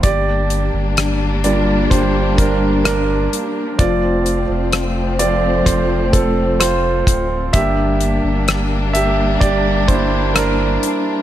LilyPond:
<<
  \new Staff \with { instrumentName = "Grand piano" } { \time 4/4 \key g \dorian \tempo 4 = 64 <g' d''>4. <f' d''>8 <g' c''>8 <d' bes'>8 <d' bes'>4 | <f' d''>4. <f' d''>8 <f' c''>8 <c' a'>8 <f' c''>4 | <g' e''>4. <g' e''>8 <g' d''>8 <e' c''>8 <d' bes'>4 | }
  \new Staff \with { instrumentName = "Grand piano" } { \time 4/4 \key g \dorian r4. <g bes d'>2~ <g bes d'>8 | <f a c'>8 r4 <f a c'>8 r2 | <g bes d'>2~ <g bes d'>8 <g bes d'>8 r4 | }
  \new Staff \with { instrumentName = "String section" } { \time 4/4 \key g \dorian <g bes d'>1 | <f a c'>1 | <g bes d'>1 | }
  \new Staff \with { instrumentName = "Sub bass" } { \clef bass \time 4/4 \key g \dorian g,,8. g,,4~ g,,16 g,,4. r8 | f,,8. f,,4~ f,,16 f,,4. d,,8 | g,,8. g,,4~ g,,16 g,,4. r8 | }
  \new DrumStaff \with { instrumentName = "Drums" } \drummode { \time 4/4 <hh bd>8 hh8 <hh ss>8 hh8 <hh bd>8 <hh bd>8 <hh ss>8 hh8 | <hh bd>8 hh8 <hh ss>8 hh8 <hh bd>8 <hh bd>8 <hh ss>8 <hh bd>8 | <hh bd>8 hh8 <hh ss>8 hh8 <hh bd>8 <hh bd>8 <hh ss>8 hh8 | }
>>